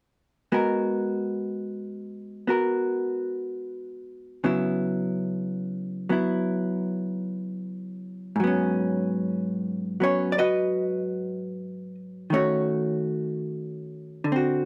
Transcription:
0.52 G#3 B3 F#4 A#4
2.47 B3 F#4 A#4
4.44 C#3 F#3 B3 E4
6.09 F#3 B3 E4
8.36 G#2
8.40 F#3 B3
8.47 C#4
10.00 F#3 B3 C#4 C#5
10.32 D5
10.38 F#4 B4 D#5
12.30 D#3 A3 C#4 C#5
12.35 F#4
14.24 D3
14.32 C4 F#4

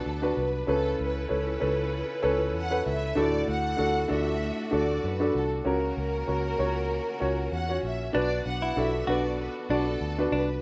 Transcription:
Already playing: F#3 B3 D4 F#4 A4 B4
0.06 D2
0.22 D4 F#4 B4
0.37 C2 B4
0.67 C#2 C#3 C#4 E4 A4 B4
1.00 C#2 B4
1.29 C#2 C#4 A4 B4
1.60 C#2 C#4 A4 B4
2.22 C#2 C#4 A4 B4
2.55 E2 F#5
2.70 C#4 A4 B4
2.86 C#2 E5
3.15 D2 A2 A3 D4 F#4 A4 D5
3.48 D2 F#5
3.77 D2 D4 F#4 A4
4.08 D2 D4 F#4 A4
4.13 E5
4.71 D2 D4 F#4 A4 D5
5.04 F#2 B4
5.20 D4 F#4 A4
5.35 C2 A4
5.65 C#2 C#3 A#3 C#4 F#4 A#4
5.97 C#2
6.27 C#2 C#4 F#4 A#4
6.59 C#2 C#4 F#4 C#5
7.20 C#2 C#4 F#4 C#5
7.52 E2 F#5
7.69 C#4 F#4 C#5
7.83 A#1 E5
8.13 B1 B3 D4 F#4 B4 D5
8.46 B1 F#5
8.62 E4
8.76 B1 D4 F#4 A4 E5
9.07 B1 D4 F#4 B4 D5
9.41 B4
9.70 B1 D4 F#4 A4 D5
10.01 D2
10.18 D4 F#4 B4
10.32 C2 D4 B4

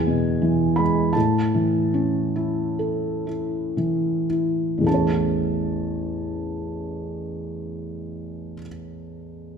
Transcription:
Already playing: E2 G#5
0.07 B2
0.42 E3
0.76 G#3 B5
1.13 A2 A5
1.55 E3
1.94 C#4
2.36 E4
2.79 A4
3.27 E4
3.77 E3
4.30 E4
4.78 A1 E2
4.84 A3 C#4 A5
4.91 E4 C#5

